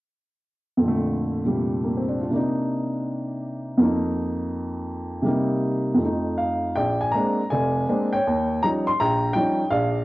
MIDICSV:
0, 0, Header, 1, 2, 480
1, 0, Start_track
1, 0, Tempo, 376884
1, 1053, Time_signature, 4, 2, 24, 8
1, 2971, Tempo, 365408
1, 7291, Tempo, 376412
1, 10651, Tempo, 365408
1, 13001, End_track
2, 0, Start_track
2, 0, Title_t, "Upright piano"
2, 0, Program_c, 0, 0
2, 984, Note_on_c, 0, 41, 43
2, 1033, Note_on_c, 0, 46, 41
2, 1072, Note_on_c, 0, 50, 43
2, 1116, Note_on_c, 0, 57, 50
2, 1822, Note_off_c, 0, 46, 0
2, 1841, Note_on_c, 0, 46, 33
2, 1864, Note_on_c, 0, 48, 30
2, 1874, Note_on_c, 0, 55, 38
2, 2343, Note_on_c, 0, 58, 34
2, 2510, Note_on_c, 0, 60, 35
2, 2587, Note_off_c, 0, 58, 0
2, 2658, Note_on_c, 0, 62, 35
2, 2794, Note_off_c, 0, 60, 0
2, 2820, Note_on_c, 0, 65, 44
2, 2900, Note_off_c, 0, 62, 0
2, 2922, Note_off_c, 0, 48, 0
2, 2937, Note_off_c, 0, 41, 0
2, 2941, Note_on_c, 0, 48, 43
2, 2965, Note_off_c, 0, 46, 0
2, 2965, Note_on_c, 0, 58, 39
2, 2981, Note_off_c, 0, 50, 0
2, 2982, Note_off_c, 0, 55, 0
2, 2989, Note_on_c, 0, 62, 38
2, 3004, Note_off_c, 0, 57, 0
2, 3008, Note_on_c, 0, 63, 44
2, 3060, Note_off_c, 0, 65, 0
2, 4866, Note_on_c, 0, 41, 44
2, 4876, Note_off_c, 0, 48, 0
2, 4885, Note_on_c, 0, 53, 43
2, 4888, Note_off_c, 0, 58, 0
2, 4900, Note_off_c, 0, 62, 0
2, 4910, Note_off_c, 0, 63, 0
2, 4917, Note_on_c, 0, 58, 45
2, 4936, Note_on_c, 0, 63, 53
2, 6767, Note_on_c, 0, 48, 48
2, 6794, Note_off_c, 0, 41, 0
2, 6794, Note_on_c, 0, 55, 42
2, 6801, Note_off_c, 0, 58, 0
2, 6804, Note_off_c, 0, 53, 0
2, 6818, Note_off_c, 0, 63, 0
2, 6820, Note_on_c, 0, 58, 44
2, 6837, Note_on_c, 0, 63, 53
2, 7703, Note_on_c, 0, 41, 39
2, 7747, Note_off_c, 0, 48, 0
2, 7755, Note_on_c, 0, 53, 34
2, 7760, Note_off_c, 0, 55, 0
2, 7773, Note_off_c, 0, 58, 0
2, 7781, Note_off_c, 0, 63, 0
2, 7803, Note_on_c, 0, 57, 35
2, 7845, Note_on_c, 0, 63, 44
2, 8255, Note_on_c, 0, 77, 61
2, 8706, Note_off_c, 0, 77, 0
2, 8707, Note_off_c, 0, 41, 0
2, 8733, Note_off_c, 0, 53, 0
2, 8738, Note_on_c, 0, 79, 74
2, 8751, Note_on_c, 0, 34, 62
2, 8751, Note_on_c, 0, 74, 53
2, 8757, Note_off_c, 0, 57, 0
2, 8778, Note_off_c, 0, 63, 0
2, 9060, Note_on_c, 0, 80, 76
2, 9063, Note_off_c, 0, 79, 0
2, 9162, Note_off_c, 0, 34, 0
2, 9198, Note_on_c, 0, 82, 72
2, 9211, Note_off_c, 0, 80, 0
2, 9229, Note_on_c, 0, 58, 41
2, 9231, Note_on_c, 0, 56, 46
2, 9237, Note_on_c, 0, 60, 39
2, 9241, Note_on_c, 0, 62, 49
2, 9555, Note_off_c, 0, 58, 0
2, 9556, Note_off_c, 0, 56, 0
2, 9559, Note_off_c, 0, 60, 0
2, 9561, Note_off_c, 0, 62, 0
2, 9654, Note_off_c, 0, 74, 0
2, 9654, Note_off_c, 0, 82, 0
2, 9691, Note_on_c, 0, 80, 77
2, 9708, Note_on_c, 0, 74, 56
2, 9712, Note_on_c, 0, 29, 58
2, 10119, Note_off_c, 0, 29, 0
2, 10184, Note_on_c, 0, 56, 47
2, 10184, Note_on_c, 0, 60, 40
2, 10185, Note_on_c, 0, 58, 43
2, 10188, Note_on_c, 0, 62, 50
2, 10485, Note_on_c, 0, 79, 77
2, 10505, Note_on_c, 0, 73, 60
2, 10507, Note_off_c, 0, 80, 0
2, 10508, Note_off_c, 0, 56, 0
2, 10508, Note_off_c, 0, 58, 0
2, 10508, Note_off_c, 0, 60, 0
2, 10510, Note_off_c, 0, 62, 0
2, 10605, Note_off_c, 0, 74, 0
2, 10670, Note_on_c, 0, 39, 65
2, 11081, Note_off_c, 0, 39, 0
2, 11137, Note_on_c, 0, 82, 89
2, 11149, Note_on_c, 0, 53, 43
2, 11154, Note_off_c, 0, 79, 0
2, 11155, Note_on_c, 0, 61, 42
2, 11156, Note_on_c, 0, 63, 52
2, 11159, Note_on_c, 0, 55, 43
2, 11207, Note_off_c, 0, 82, 0
2, 11406, Note_off_c, 0, 73, 0
2, 11457, Note_on_c, 0, 84, 92
2, 11473, Note_off_c, 0, 53, 0
2, 11476, Note_off_c, 0, 61, 0
2, 11476, Note_off_c, 0, 63, 0
2, 11478, Note_off_c, 0, 55, 0
2, 11607, Note_off_c, 0, 84, 0
2, 11626, Note_on_c, 0, 82, 91
2, 11630, Note_on_c, 0, 34, 64
2, 11643, Note_on_c, 0, 79, 64
2, 12037, Note_off_c, 0, 34, 0
2, 12044, Note_off_c, 0, 79, 0
2, 12064, Note_on_c, 0, 79, 85
2, 12066, Note_off_c, 0, 82, 0
2, 12091, Note_on_c, 0, 55, 43
2, 12093, Note_on_c, 0, 53, 47
2, 12101, Note_on_c, 0, 61, 45
2, 12106, Note_on_c, 0, 63, 51
2, 12423, Note_off_c, 0, 55, 0
2, 12424, Note_off_c, 0, 53, 0
2, 12428, Note_off_c, 0, 61, 0
2, 12431, Note_off_c, 0, 63, 0
2, 12524, Note_off_c, 0, 79, 0
2, 12552, Note_on_c, 0, 77, 79
2, 12557, Note_on_c, 0, 34, 67
2, 12571, Note_on_c, 0, 74, 57
2, 12978, Note_off_c, 0, 34, 0
2, 13001, Note_off_c, 0, 74, 0
2, 13001, Note_off_c, 0, 77, 0
2, 13001, End_track
0, 0, End_of_file